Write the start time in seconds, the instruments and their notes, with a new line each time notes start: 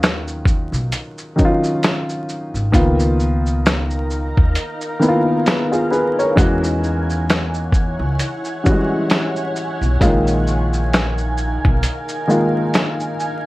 Already playing: upright bass D#2, upright piano D#3 F#3 C#4 F4
0.03 snare, closed hi-hat, shaker
0.28 shaker
0.45 kick, shaker
0.72 upright bass B1, shaker
0.92 closed hi-hat, shaker
1.18 shaker
1.36 upright piano D#3 F#3 C#4 D#4, kick, shaker
1.45 upright piano F4
1.64 shaker
1.83 snare, closed hi-hat, shaker
2.09 shaker
2.29 shaker
2.54 upright bass G#1, shaker
2.72 upright bass C#2, upright piano D#3 A#3 B3 F4, ambient pad D#4 A#4 F5 A#5, kick, closed hi-hat, shaker
3.00 shaker
3.20 shaker
3.46 shaker
3.66 snare, closed hi-hat, shaker
3.90 shaker
4.10 shaker
4.37 upright bass D#2, kick
4.55 ambient pad G#5, closed hi-hat, shaker
4.81 shaker
4.99 upright piano D#3 A#3 B3 E4, shaker
5.08 upright piano F4
5.46 upright piano G#4 B4, snare, closed hi-hat, shaker
5.72 upright piano F4 G#4, shaker
5.91 upright piano G#4 B4, shaker
6.19 upright piano A#4 C#5, shaker
6.36 upright bass E2, upright piano E3 G#3 C#4 F#4, ambient pad E4 C#5 F#5, kick, closed hi-hat, shaker
6.64 shaker
6.84 shaker
7.10 shaker
7.30 snare, closed hi-hat, shaker
7.54 shaker
7.72 kick, shaker
7.99 upright bass C#2
8.19 closed hi-hat, shaker
8.45 shaker
8.64 upright piano E3 G3 C#4 F#4, kick, shaker
8.71 upright piano G#3
9.10 snare, closed hi-hat, shaker
9.36 shaker
9.56 shaker
9.81 upright bass B1, shaker
10.00 upright bass A#1, upright piano C#3 G#3 A#3 F4, ambient pad D#4 A#4 F5, kick, closed hi-hat, shaker
10.06 upright piano D#3
10.27 shaker
10.47 shaker
10.73 shaker
10.93 snare, closed hi-hat, shaker
11.18 shaker
11.38 shaker
11.65 upright bass B1, kick
11.83 closed hi-hat, shaker
12.09 shaker
12.27 upright piano D#3 G#3 A#3 F4, shaker
12.74 snare, closed hi-hat, shaker
13.00 shaker
13.20 shaker